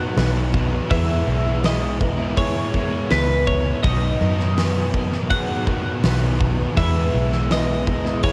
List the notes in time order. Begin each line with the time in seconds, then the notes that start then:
Already playing: B2 D#3 F#3 B3 D#4 A#4 F#5
0.16 B1 B2 D#3 F#3 B3 D#4 B4, snare, open hi-hat
0.20 B3
0.34 F#3 B3 D#4
0.52 B2 D#3 F#3 B3 D#4, kick
0.56 B3
0.71 F#3 B3 D#4
0.89 E2 B2 E3 G#3 B3 E4 B4 E5, kick, open hi-hat
0.93 E3
1.27 B1 E2 B2 E3 G#3 B3 E4 A#4
1.45 B2 E3 G#3 B3 E4
1.63 E2 B2 E3 G#3 B3 E4 B4 D#5, snare, open hi-hat
2.00 E2 B2 E3 A#4, muted overdriven electric guitar stroke, kick
2.18 E3 G#3 B3 E4
2.22 B2
2.37 E3 G#3 B3 E4 G#4 C#5, kick, open hi-hat
2.55 E3 G#3 B3 E4
2.59 B2
2.73 E2 B2 E3 G#3 B3 E4 A#4, kick
2.77 E3
3.09 C#2 E2 E3 G#3 B3 E4 B4, snare, open hi-hat
3.13 B2 E3
3.27 E3 G#3 B3 E4
3.33 B2
3.46 E2 E3 G#3 B3 E4 C#5, kick
3.50 B2 E3
3.64 E3 G#3 B3 E4
3.69 B2
3.82 B1 B2 D#3 F#3 B3 D#4 B4 D#5, kick, open hi-hat
3.86 B3 D#4
4.20 F#2 B2 D#3 F#3 B3 D#4 A#4
4.38 F#3 B3 D#4, snare
4.43 F#3
4.56 B2 D#3 F#3 B3 D#4 B4, snare, open hi-hat
4.60 B3
4.93 B2 F#3 B3 A#4, muted overdriven electric guitar stroke, kick
5.11 F#3 B3 D#4, snare
5.30 B2 D#3 F#3 B3 D#4 G#4 F#5, kick, open hi-hat
5.48 F#3 B3 D#4
5.65 B2 D#3 F#3 B3 D#4 A#4, kick
6.02 B1 B2 D#3 F#3 B3 D#4 B4, snare, open hi-hat
6.20 F#3 B3 D#4
6.24 F#3
6.38 B2 D#3 F#3 B3 D#4, kick
6.42 B3
6.57 F#3 B3 D#4
6.61 F#3
6.75 E2 B2 E3 G#3 B3 E4 B4 E5, kick, open hi-hat
6.79 B3 E4
7.12 B1 E2 B2 E3 G#3 B3 E4 A#4
7.30 E3 G#3 B3 E4, snare
7.35 B2
7.50 E2 B2 E3 G#3 B3 E4 B4 D#5, snare, open hi-hat
7.54 E3
7.87 E2 B2 E3 A#4, muted overdriven electric guitar stroke, kick
8.04 B2 E3 G#3 B3 E4, snare
8.23 E3 G#3 B3 E4 G#4 C#5, kick, open hi-hat